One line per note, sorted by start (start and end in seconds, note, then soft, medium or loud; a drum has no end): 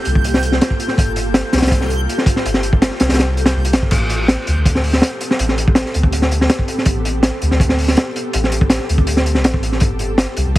0.00 3.88 A#3 medium
0.00 3.88 F4 medium
0.00 3.88 G4 medium
0.00 3.88 A4 medium
0.00 3.93 G6 medium
0.05 0.14 C2 medium
0.05 closed hi-hat medium
0.15 0.60 C2 medium
0.15 kick loud
0.24 closed hi-hat medium
0.34 snare medium
0.43 closed hi-hat medium
0.52 snare medium
0.61 snare loud
0.61 closed hi-hat medium
0.70 kick medium
0.80 closed hi-hat medium
0.88 snare soft
0.98 1.42 G1 loud
0.98 kick loud
0.98 closed hi-hat medium
1.16 closed hi-hat medium
1.34 snare loud
1.34 closed hi-hat medium
1.53 1.61 C2 medium
1.53 snare medium
1.53 closed hi-hat medium
1.57 snare medium
1.57 closed hi-hat medium
1.62 2.07 C2 medium
1.62 snare medium
1.62 closed hi-hat medium
1.66 snare medium
1.66 closed hi-hat medium
1.71 kick loud
1.71 closed hi-hat loud
1.81 snare soft
1.90 closed hi-hat medium
2.09 closed hi-hat medium
2.18 snare soft
2.26 kick medium
2.26 closed hi-hat medium
2.36 snare soft
2.45 2.90 G1 loud
2.45 closed hi-hat medium
2.54 snare soft
2.63 closed hi-hat medium
2.73 kick medium
2.82 snare loud
2.82 closed hi-hat medium
2.91 snare soft
3.00 3.08 C2 medium
3.00 snare medium
3.00 closed hi-hat medium
3.09 3.54 C2 medium
3.09 snare medium
3.09 closed hi-hat medium
3.14 snare medium
3.14 closed hi-hat medium
3.19 snare loud
3.19 closed hi-hat medium
3.37 closed hi-hat medium
3.46 snare medium
3.46 closed hi-hat medium
3.55 3.75 C2 medium
3.65 closed hi-hat medium
3.73 3.90 G1 medium
3.73 snare loud
3.73 closed hi-hat medium
3.82 kick medium
3.91 4.36 A1 loud
3.91 9.77 B3 medium
3.91 9.77 C4 medium
3.91 10.58 G4 medium
3.91 10.58 A4 medium
3.91 kick loud
3.91 closed hi-hat loud
3.91 crash medium
4.10 closed hi-hat medium
4.28 snare loud
4.28 closed hi-hat medium
4.47 4.56 D2 loud
4.47 closed hi-hat medium
4.57 5.01 D2 medium
4.65 kick loud
4.65 closed hi-hat medium
4.75 snare medium
4.84 open hi-hat medium
4.93 snare medium
5.02 snare loud
5.02 closed hi-hat medium
5.21 closed hi-hat medium
5.31 snare medium
5.39 5.84 A1 loud
5.39 closed hi-hat loud
5.49 snare soft
5.58 closed hi-hat medium
5.68 kick loud
5.75 snare loud
5.75 closed hi-hat medium
5.86 snare soft
5.94 6.03 D2 medium
5.94 closed hi-hat medium
6.03 6.48 D2 medium
6.03 kick loud
6.12 closed hi-hat medium
6.22 snare medium
6.31 closed hi-hat medium
6.41 snare medium
6.50 snare loud
6.50 closed hi-hat medium
6.59 kick medium
6.68 closed hi-hat medium
6.78 snare soft
6.85 7.31 A1 loud
6.85 kick loud
6.85 closed hi-hat medium
7.05 closed hi-hat medium
7.23 snare loud
7.23 closed hi-hat medium
7.42 7.50 D2 medium
7.42 closed hi-hat medium
7.51 7.96 D2 medium
7.51 snare soft
7.60 kick loud
7.60 closed hi-hat medium
7.69 snare medium
7.79 open hi-hat medium
7.88 snare soft
7.97 snare loud
7.97 closed hi-hat medium
8.16 closed hi-hat medium
8.33 8.78 A1 loud
8.33 closed hi-hat medium
8.44 snare soft
8.52 closed hi-hat medium
8.61 kick medium
8.70 snare loud
8.70 closed hi-hat medium
8.79 snare soft
8.89 8.97 D2 medium
8.89 closed hi-hat medium
8.98 9.37 D2 medium
8.98 kick medium
9.07 closed hi-hat loud
9.17 snare medium
9.26 closed hi-hat medium
9.35 9.46 C2 medium
9.35 snare soft
9.44 9.80 A1 medium
9.44 snare loud
9.44 closed hi-hat medium
9.54 kick loud
9.63 closed hi-hat medium
9.72 snare soft
9.80 10.26 G1 loud
9.80 10.58 A#3 medium
9.80 10.58 F4 medium
9.80 kick loud
9.80 closed hi-hat medium
9.99 closed hi-hat medium
10.18 snare loud
10.18 closed hi-hat medium
10.37 10.45 C2 medium
10.37 closed hi-hat medium
10.46 10.58 C2 medium